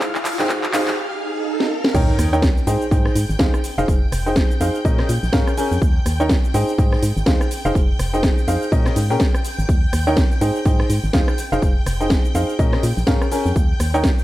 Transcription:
Already playing: F5 F6, riser
0.01 kick, clap, closed hi-hat, cabasa
0.15 clap, cabasa
0.25 snare, clap, closed hi-hat, open hi-hat, cabasa
0.32 snare, closed hi-hat
0.39 D#4 G#4 C5 G5, snare, clap, closed hi-hat, cabasa
0.44 snare, closed hi-hat
0.49 kick, snare, clap, cabasa
0.63 clap, cabasa
0.73 D#4 G#4 C5 F5, clap, closed hi-hat, open hi-hat, cabasa
0.88 clap, closed hi-hat, cabasa
0.98 swell
1.60 snare
1.84 snare
1.95 D#2 D#4 A#4 C#5 G5 G6, kick, closed hi-hat, crash, sub drop, cabasa
2.19 D#2, cross-stick, closed hi-hat, open hi-hat, cabasa
2.33 D#4 A#4 C#5 G5, cabasa
2.42 kick, snare, closed hi-hat, cabasa
2.57 snare, cabasa
2.67 G#2 D#4 G#4 C5 G5, closed hi-hat, open hi-hat, cabasa
2.82 cabasa
2.91 G#2 D#4 G#4 C5 G5, kick, closed hi-hat, cabasa
3.05 cross-stick, snare
3.15 G#2, closed hi-hat, open hi-hat, cabasa
3.30 G#1, snare, cabasa
3.39 D#2 D#4 G#4 C5 F5, kick, snare, closed hi-hat, cabasa
3.54 cross-stick, cabasa
3.64 snare, closed hi-hat, open hi-hat, cabasa
3.78 F1 D#4 G#4 C5 F5, cabasa
3.88 F1, kick, closed hi-hat, cabasa
4.12 F1, cross-stick, closed hi-hat, open hi-hat, cabasa
4.26 D#4 G#4 C5 G5, cabasa
4.36 kick, snare, closed hi-hat, cabasa
4.51 cabasa
4.61 F2 D#4 G#4 C5 F5, closed hi-hat, open hi-hat, cabasa
4.75 closed hi-hat, cabasa
4.85 A#2 C#4 G#4 A#4 D#5, kick, closed hi-hat, cabasa
4.98 cross-stick, snare
5.09 A#2, closed hi-hat, open hi-hat, cabasa
5.23 A#1, snare, cabasa
5.33 G#2 C#4 G#4 A#4 F5, kick, snare, closed hi-hat, cabasa
5.47 cross-stick, cabasa
5.58 C#4 G#4 A#4 G#5, open hi-hat, cabasa
5.72 F2, cabasa
5.82 D#2, kick, closed hi-hat, cabasa
6.06 D#2, cross-stick, closed hi-hat, open hi-hat, cabasa
6.20 D#4 A#4 C#5 G5, cabasa
6.29 kick, snare, closed hi-hat, cabasa
6.44 snare, cabasa
6.54 G#2 D#4 G#4 C5 G5, closed hi-hat, open hi-hat, cabasa
6.69 cabasa
6.78 G#2 D#4 G#4 C5 G5, kick, closed hi-hat, cabasa
6.92 cross-stick, snare
7.02 G#2, closed hi-hat, open hi-hat, cabasa
7.16 G#1, snare, cabasa
7.26 D#2 D#4 G#4 C5 F5, kick, snare, closed hi-hat, cabasa
7.41 cross-stick, cabasa
7.51 snare, closed hi-hat, open hi-hat, cabasa
7.65 F1 D#4 G#4 C5 F5, cabasa
7.75 F1, kick, closed hi-hat, cabasa
7.99 F1, cross-stick, closed hi-hat, open hi-hat, cabasa
8.14 D#4 G#4 C5 G5, cabasa
8.23 kick, snare, closed hi-hat, cabasa
8.38 cabasa
8.48 F2 D#4 G#4 C5 F5, closed hi-hat, open hi-hat, cabasa
8.62 closed hi-hat, cabasa
8.72 A#2 C#4 G#4 A#4 D#5, kick, closed hi-hat, cabasa
8.86 cross-stick, snare, cabasa
8.96 G#2, closed hi-hat, open hi-hat, cabasa
9.10 A#2 C#4 G#4 A#4 G5, snare, cabasa
9.20 kick, snare, closed hi-hat, cabasa
9.35 cross-stick, cabasa
9.45 open hi-hat, cabasa
9.59 G#1, cabasa
9.69 D#2, kick, closed hi-hat, cabasa
9.93 D#2, cross-stick, closed hi-hat, open hi-hat, cabasa
10.07 D#4 A#4 C#5 G5, cabasa
10.17 kick, snare, closed hi-hat, cabasa
10.32 snare, cabasa
10.41 G#2 D#4 G#4 C5 G5, closed hi-hat, open hi-hat, cabasa
10.56 cabasa
10.65 G#2 D#4 G#4 C5 G5, kick, closed hi-hat, cabasa
10.80 cross-stick, snare
10.90 G#2, closed hi-hat, open hi-hat, cabasa
11.04 G#1, snare, cabasa
11.13 D#2 D#4 G#4 C5 F5, kick, snare, closed hi-hat, cabasa
11.28 cross-stick, cabasa
11.38 snare, closed hi-hat, open hi-hat, cabasa
11.52 F1 D#4 G#4 C5 F5, cabasa
11.62 F1, kick, closed hi-hat, cabasa
11.86 F1, cross-stick, closed hi-hat, open hi-hat, cabasa
12.01 D#4 G#4 C5 G5, cabasa
12.10 kick, snare, closed hi-hat, cabasa
12.25 cabasa
12.34 F2 D#4 G#4 C5 F5, closed hi-hat, open hi-hat, cabasa
12.49 closed hi-hat, cabasa
12.59 A#2 C#4 G#4 A#4 D#5, kick, closed hi-hat, cabasa
12.73 cross-stick, snare
12.83 A#2, closed hi-hat, open hi-hat, cabasa
12.97 A#1, snare, cabasa
13.07 G#2 C#4 G#4 A#4 F5, kick, snare, closed hi-hat, cabasa
13.22 cross-stick, cabasa
13.32 C#4 G#4 A#4 G#5, open hi-hat, cabasa
13.46 F2, cabasa
13.56 D#2, kick, closed hi-hat, cabasa
13.79 D#2, cross-stick, closed hi-hat, open hi-hat, cabasa
13.94 D#4 A#4 C#5 G5, cabasa
14.04 kick, snare, closed hi-hat, cabasa
14.19 snare, cabasa

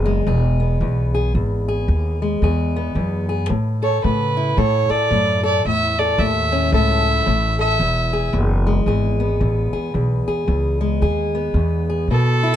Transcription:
Already playing: F#1 E2 B3 G#4
0.06 G#3
0.27 E1 E2 G#4
0.60 B3
0.81 B1 E2
1.14 G#4
1.34 G#1 E2
1.68 G#4
1.88 D#2
2.22 G#3
2.42 E2 G#4
2.76 B3
2.95 E2 F#2
3.29 G#4
3.49 A2
3.83 A4 C#5
4.04 A2 C#3 B4
4.37 E4
4.57 A2 A4 C#5
4.89 A4 D5, muted upright bass stroke
5.10 F#2 A2
5.43 A4 D5
5.65 E2 A2 E5
5.99 A4 D5
6.18 D#2 A2 E5
6.52 C#4
6.72 C#2 A2 A4 E5
7.06 E4
7.26 A1 A2
7.59 A4 E5
7.79 E1 E2
8.13 G#4
8.33 F#1 E2
8.67 G#3
8.86 G#1 E2 G#4
9.20 B3
9.40 A1 E2
9.73 G#4, muted upright bass stroke
9.94 B1 E2
10.27 G#4, muted upright bass stroke
10.47 C#2 E2
10.81 G#3
11.02 D#2 G#4
11.35 B3
11.54 E2
11.90 G#4
12.08 B2 A4
12.43 E4

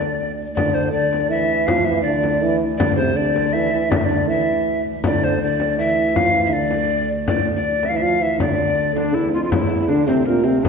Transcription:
Already playing: D2 D3 D5
0.01 frame drum
0.20 frame drum
0.39 frame drum
0.55 D2 D3 D5, frame drum
0.74 C5, frame drum
0.92 D3 D5
1.13 frame drum
1.30 E3 E5, frame drum
1.66 F3 F5, frame drum
1.85 E3 E5, frame drum
2.02 D3 D5
2.24 frame drum
2.42 E3, frame drum
2.78 D3 D5, frame drum
2.96 C3 C5, frame drum
3.16 D3 D5
3.36 frame drum
3.53 E3 E5, frame drum
3.72 E3
3.90 D3 D5, frame drum
3.97 E5
4.05 D3 D5
4.28 E3 E5
4.66 frame drum
4.86 frame drum
5.03 D2 D3 D5, frame drum
5.24 C5
5.42 D3 D5
5.60 frame drum
5.79 E3 E5, frame drum
6.15 F3 F5, frame drum
6.33 E3, frame drum
6.45 E5
6.50 D3 D5
6.71 frame drum
6.90 frame drum
7.26 D3 D5, frame drum
7.47 frame drum
7.56 D5
7.83 E5, frame drum
7.89 E3 F5
7.96 E5
8.01 F3 F5, frame drum
8.21 E3 E5
8.32 E3
8.38 D3 D5, frame drum
8.59 frame drum
8.95 D3 D4, frame drum
9.14 E2 E4
9.33 F2 F4
9.44 F4
9.50 D2 E2 E4, frame drum
9.83 E4
9.88 D3 D4, frame drum
10.06 C3 C4, frame drum
10.26 A#2 A#4, frame drum
10.44 C3 C4, frame drum
10.63 D3 D4, frame drum

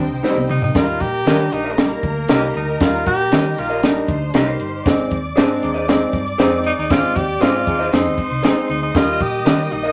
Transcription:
Already playing: D#4 C5 G5
0.11 C2
0.23 G3 C4 D#4 G4 C5, muted picked electric bass stroke, snare, tambourine
0.36 C2, high tom
0.49 C3 D#4, mid tom
0.62 D#4, floor tom
0.75 D#2 G3 A#3 D#4 F4 A#4 A#5, kick, snare, closed hi-hat, tambourine
1.00 A#2 G4, kick, closed hi-hat
1.26 D#3 G3 A#3 D4 G4 A#4 D#5, snare, closed hi-hat, tambourine
1.52 A#1 A#3 D#4 G4, closed hi-hat
1.64 G4 A#4 D#5
1.71 A3
1.78 G3 A#3 D#4 G4, snare, closed hi-hat, tambourine
2.03 D2, kick, closed hi-hat
2.28 C2 G3 A#3 D#4 G4 A#4 D#5, snare, closed hi-hat, tambourine
2.54 D2 D#4, closed hi-hat
2.69 D#4
2.80 D#2 G3 A#3 D#4 F4, kick, snare, closed hi-hat, tambourine
3.06 A#2 G4, kick, closed hi-hat
3.31 D#3 G3 A#3 D#4 G4 A#4 D#5, snare, closed hi-hat, tambourine
3.58 A#1 D#4 F4 G4 A#4, closed hi-hat
3.70 G4 A#4 D#5, closed hi-hat
3.83 G3 A#3 D4 D#4 G4 A#4, snare, closed hi-hat, tambourine
4.08 D2 C5 C6, kick, closed hi-hat
4.34 C2 G3 A#3 D#4 G4 A#4 D#5, snare, closed hi-hat, tambourine
4.59 G1, closed hi-hat
4.85 G#1 G#3 C4 D#4 D5 D6, kick, snare, closed hi-hat, tambourine
5.11 D#2, kick, closed hi-hat
5.36 G#2 G#3 C4 D4 G#4 C5 D#5, snare, closed hi-hat, tambourine
5.62 D#2 C4 D#4 G#4, closed hi-hat
5.74 G#4 C5 D#5, closed hi-hat
5.88 G#3 C4 D#4 G#4, snare, closed hi-hat, tambourine
6.13 G2, kick, closed hi-hat
6.27 closed hi-hat
6.38 F2 G#3 C4 D#4 G#4 C5 D#5, snare, closed hi-hat, tambourine
6.64 D#4, closed hi-hat
6.78 D#2 D#4
6.90 G#1 G#3 C4 D#4 F4, kick, snare, closed hi-hat, tambourine
7.16 D#2 G4, kick, closed hi-hat
7.40 G#2 G#3 C4 F4 G#4 C5 D#5, snare, closed hi-hat, tambourine
7.66 D#2 C4 D#4 G#4, kick, closed hi-hat
7.79 G#4 C5 D#5
7.92 F2 G#3 C4 D#4 G#4 C5 C6, snare, closed hi-hat, tambourine
8.05 D#2
8.18 kick, closed hi-hat
8.31 C2
8.43 G#1 G#3 C4 D#4 G#4 C5 D#5, snare, closed hi-hat, tambourine
8.69 D2 D#4, closed hi-hat
8.83 D#4
8.94 D#2 D#3 G3 A#3 D#4 F4 G4 D#5 D#6, kick, snare, closed hi-hat, tambourine
9.20 A#2 G4, kick, closed hi-hat
9.45 D#3 G3 A#3 D#4 G4 A#4 D#5, snare, closed hi-hat, tambourine
9.71 A#1 A#3 D#4 G4, closed hi-hat
9.83 G4 A#4 D#5, closed hi-hat

